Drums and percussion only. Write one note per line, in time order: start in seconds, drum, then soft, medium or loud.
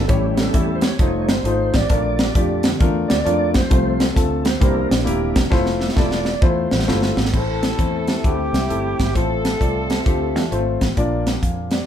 0.09 kick loud
0.09 closed hi-hat medium
0.37 snare medium
0.37 closed hi-hat medium
0.54 kick medium
0.54 closed hi-hat loud
0.81 snare loud
0.81 closed hi-hat medium
0.99 kick loud
0.99 closed hi-hat medium
1.29 snare loud
1.29 closed hi-hat medium
1.45 closed hi-hat medium
1.74 kick medium
1.74 snare medium
1.74 closed hi-hat medium
1.90 kick loud
1.90 closed hi-hat medium
2.19 snare loud
2.19 closed hi-hat medium
2.35 kick medium
2.35 closed hi-hat medium
2.63 snare loud
2.63 closed hi-hat medium
2.80 kick loud
2.80 closed hi-hat medium
3.10 snare loud
3.10 closed hi-hat medium
3.26 closed hi-hat medium
3.54 kick medium
3.54 snare loud
3.54 closed hi-hat medium
3.71 kick loud
3.71 closed hi-hat medium
4.00 snare loud
4.00 closed hi-hat medium
4.16 kick medium
4.16 closed hi-hat medium
4.45 snare loud
4.45 closed hi-hat medium
4.62 kick loud
4.62 closed hi-hat medium
4.91 snare loud
4.91 closed hi-hat medium
5.07 closed hi-hat medium
5.36 kick medium
5.36 snare loud
5.36 closed hi-hat medium
5.52 kick loud
5.52 snare medium
5.66 snare medium
5.81 snare medium
5.89 snare medium
5.96 kick medium
5.96 snare medium
6.11 snare medium
6.25 snare medium
6.42 kick loud
6.71 snare medium
6.79 snare medium
6.88 snare medium
7.02 snare medium
7.17 snare loud
7.25 snare medium
7.34 kick medium
7.34 crash medium
7.63 snare medium
7.63 closed hi-hat medium
7.79 kick medium
7.79 closed hi-hat medium
8.07 snare loud
8.07 closed hi-hat soft
8.24 kick loud
8.24 closed hi-hat medium
8.54 snare medium
8.54 closed hi-hat medium
8.70 closed hi-hat medium
8.99 kick medium
8.99 snare medium
8.99 closed hi-hat medium
9.15 kick medium
9.15 closed hi-hat medium
9.45 snare medium
9.45 closed hi-hat medium
9.61 kick medium
9.61 closed hi-hat medium
9.90 snare loud
9.90 closed hi-hat medium
10.06 kick loud
10.06 closed hi-hat medium
10.36 snare medium
10.36 closed hi-hat medium
10.52 closed hi-hat medium
10.81 kick medium
10.81 snare medium
10.81 closed hi-hat medium
10.97 kick medium
10.97 closed hi-hat medium
11.27 snare medium
11.27 closed hi-hat medium
11.43 kick medium
11.43 closed hi-hat medium
11.71 snare loud
11.71 closed hi-hat medium